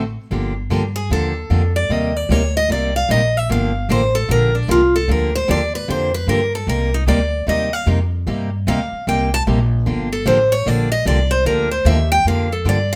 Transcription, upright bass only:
Already playing: A1
0.31 G1
0.70 G2
1.10 D#2
1.50 F2
1.89 D#2
2.29 D2
2.69 C2
3.09 A#1
3.50 G1
3.89 A1
4.29 A#1
4.68 C2
5.08 D2
5.49 D#2
5.88 F2
6.27 G2
6.67 C2
7.06 D2
7.47 D#2
7.86 F2
8.27 G2
8.67 D2
8.92 muted upright bass stroke
9.07 C2
9.47 A#1
9.86 G1
10.26 A1
10.66 A#1
11.05 C2
11.45 D2
11.85 D#2
12.24 F2
12.65 G2

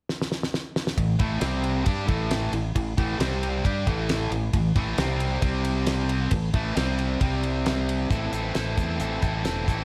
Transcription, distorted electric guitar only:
0.97 A2 E3
1.19 A2 E3 A3
1.40 C3 G3 C4
1.85 G3 D4 G4
2.07 A2 E3 A3
2.53 A2 E3
2.76 A2 E3
2.98 A2 E3 A3
3.19 C3 G3 C4
3.64 G3 D4 G4
3.87 A2 E3 A3
4.31 A2 E3
4.53 A2 E3
4.76 A2 E3 A3
4.98 C3 G3 C4
5.42 C3 G3 C4
6.31 A2 E3
6.54 A2 E3 A3
6.76 C3 G3 C4
7.21 C3 G3 C4
8.10 A2 E3 C4 E4 A4
8.32 A2 E3 C4 E4 A4
8.55 A2 E3 C4 E4 A4
8.77 A2 E3 C4 E4 A4
8.99 A2 E3 C4 E4 A4
9.21 A2 E3 C4 E4 A4
9.44 A2 E3 C4 E4 A4
9.67 A2 E3 C4 E4 A4

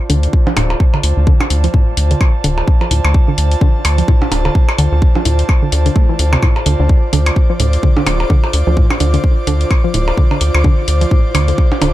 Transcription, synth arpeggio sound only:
0.10 D3
0.47 F3
0.57 A2
0.94 D3
1.27 D3
1.64 F3
1.74 A2
2.11 D3
2.44 D3
2.81 F3
2.91 A2
3.28 D3
3.61 D3
3.98 F3
4.08 A2
4.45 D3
4.79 D3
5.16 F3
5.25 A2
5.62 D3
5.86 D3
5.96 A3
6.09 E3
6.33 C3
6.43 A2
6.66 D3
6.80 D3
7.13 D3
7.50 F3
7.60 A2
7.83 D3
7.97 D3
8.30 D3
8.67 F3
8.77 A2
9.00 D3
9.14 D3
9.47 D3
9.84 F3
9.94 A2
10.17 D3
10.31 D3
10.64 D3
11.01 F3
11.11 A2
11.35 D3
11.48 D3
11.82 D3

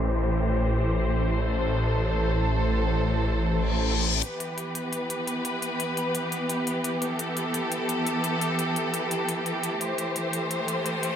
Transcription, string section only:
Already playing: E3 A3 G4 C5
1.44 A4
4.23 E3 B3 G4 B4
7.02 A4
9.81 A3 C5

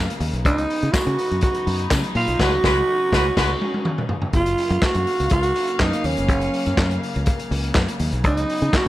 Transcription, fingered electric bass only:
0.20 D#2
0.33 B1
0.45 C#2
0.83 C#3
1.07 C#3
1.31 F#2
1.67 F#2
1.91 C#3
2.15 A#2
2.28 B1
2.40 C#2
2.64 C#2
3.13 C#2
3.37 C#2
4.33 F#1
4.70 F#2
4.95 F#2
5.20 C#2
5.32 C#2
5.80 F#2
6.04 D#2
6.18 F1
6.29 F#1
6.67 F#2
6.77 F#2
7.16 C#2
7.51 C#2
7.75 F#2
8.00 D#2
8.13 B1
8.24 C#2
8.62 C#3
8.73 muted fingered electric bass stroke

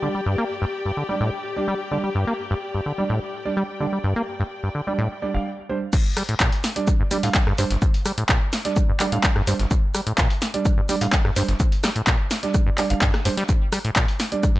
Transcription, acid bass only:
0.02 D3
0.15 G3
0.26 G2
0.38 A#3
0.62 G2
0.85 G2
0.97 D3
1.09 G3
1.20 A2
1.68 G3
1.91 D3
2.04 G3
2.15 G2
2.27 A#3
2.51 G2
2.75 G2
2.86 D3
2.98 G3
3.10 A2
3.57 G3
3.80 D3
3.93 G3
4.04 G2
4.16 A#3
4.40 G2
4.63 G2
4.75 D3
4.87 G3
4.99 A2
5.34 G1
5.93 G2
6.17 G3
6.29 A2
6.40 A#2
7.00 G2
7.11 G3
7.23 A2
7.47 G2
7.58 G2
7.70 G1
7.82 G2
8.06 G3
8.18 A2
8.29 A#2
8.89 G2
9.00 G3
9.12 A2
9.36 G2
9.47 G2
9.59 G1
9.71 G2
9.95 G3
10.07 A2
10.18 A#2
10.78 G2
10.89 G3
11.01 A2
11.25 G2
11.36 G2
11.48 G1
11.60 G2
11.83 G3
11.96 A2
12.07 A#2
12.66 G2
12.90 G1
13.02 G2
13.25 G2
13.37 G3
13.49 G2
13.72 G3
13.85 A2
13.96 A#2
14.56 G2

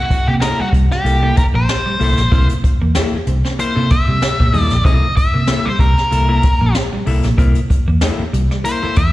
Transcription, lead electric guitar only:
Already playing: F#4
0.28 G4
0.41 A#4
0.60 F#4
0.92 G4
1.38 A#4
1.55 C5
3.60 C5
3.91 E5
4.60 D5
4.85 D#5
5.17 E5
5.66 C5
5.80 A#4
8.65 C5
8.97 E5

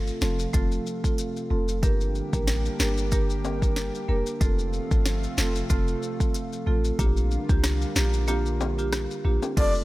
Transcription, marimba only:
Already playing: A3 C4 F4 A4
0.21 A3 C4 F4 A4
0.54 A3 C4 F4 A4
1.04 A3 C4 F4 A4
1.50 A3 C4 F4 A4
1.83 A#3 D4 G4 A#4
2.33 A#3 D4 G4 A#4
2.79 A#3 D4 G4 A#4
3.12 A#3 D4 G4 A#4
3.62 A#3 D4 G4 A#4
4.08 A#3 D4 G4 A#4
4.41 A3 C4 F4 A4
4.91 A3 C4 F4 A4
5.37 A3 C4 F4 A4
5.70 A3 C4 F4 A4
6.20 A3 C4 F4 A4
6.66 A3 C4 F4 A4
6.99 A#3 D4 F4 G4
7.49 A#3 D4 F4 G4
7.96 A#3 D4 F4 G4
8.28 A#3 D4 F4 G4
8.78 A#3 D4 F4 G4
9.25 A#3 D4 F4 G4
9.57 A3 C4 F4 A4

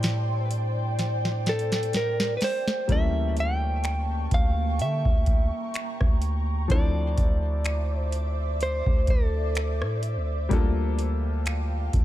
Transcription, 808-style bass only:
Already playing: A2
2.89 D2
4.32 D2
4.80 D3
5.06 D2
6.01 D2
6.70 D2
7.18 D2
8.87 D2
9.82 A2
10.17 D2
10.51 D2
11.94 D2

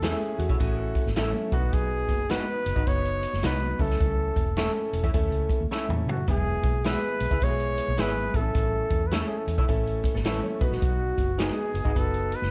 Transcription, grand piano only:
0.02 A3 B3 E4 G#4
0.09 C#4
0.60 A3 C#4 E4 F#4
1.16 A3 C#4 E4 A4
1.53 B3 D4 F#4 B4
1.59 D#4
2.30 B3 D#4 F#4 B4
2.87 B3 D#4 F#4 B4
3.43 B3 D#4 F#4 B4
3.79 A3 C#4 E4 A4
4.57 A3 C#4 E4 A4
5.14 A3 C#4 E4 A4
5.71 A3 C#4 E4 A4
6.28 G#3 B3 E4 G#4
6.85 G#3 B3 E4 F#4
6.92 G#4
7.43 G#3 B3 E4 F#4
7.50 G#4
7.99 G#3 B3 E4 G#4
8.34 A3 B3 E4 A4
8.40 C#4
9.12 A3 C#4 E4 G#4
9.19 A4
9.68 A3 C#4 E4 A4
10.25 A3 C#4 E4 A4
10.61 B3 D#4 F#4 B4
11.38 B3 D#4 F#4 G#4
11.95 B3 D#4 F#4 B4

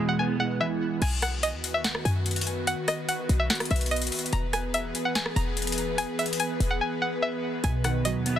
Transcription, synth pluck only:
0.09 F#5
0.19 G#5
0.40 F#5
0.61 E5
1.02 G#5
1.23 F#5
1.43 D#5
1.74 E5
1.85 F#5
2.05 G#5
2.67 F#5
2.88 D#5
3.09 F#5
3.40 E5
3.50 F#5
3.71 E5
3.91 D#5
4.33 A#5
4.53 G#5
4.74 E5
5.05 F#5
5.16 G#5
5.36 A#5
5.98 G#5
6.19 E5
6.40 G#5
6.71 F#5
6.81 G#5
7.02 F#5
7.22 E5
7.64 G#5
7.85 F#5
8.05 D#5
8.36 E5

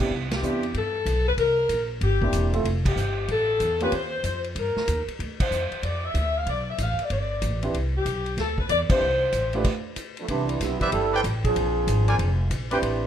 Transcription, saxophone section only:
0.36 G4
0.78 A4
1.28 B4
1.40 A#4
2.04 G4
2.88 G4
3.32 A4
3.84 B4
3.95 C5
4.59 A#4
5.42 C5
5.85 D5
6.05 E5
6.38 F5
6.49 D5
6.70 E5
6.83 F5
7.03 D5
7.13 D5
7.97 G4
8.40 A4
8.60 B4
8.70 D5
8.91 C5

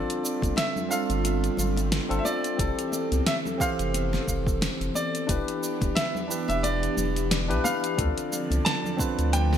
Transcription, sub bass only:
0.42 F1
1.10 G1
1.58 G1
2.11 G1
2.59 F1
3.12 C2
3.79 F1
4.28 F1
4.81 F1
5.29 E1
5.82 D1
6.49 E1
6.97 E1
7.50 B1
7.98 D2
8.51 C2
9.18 D2

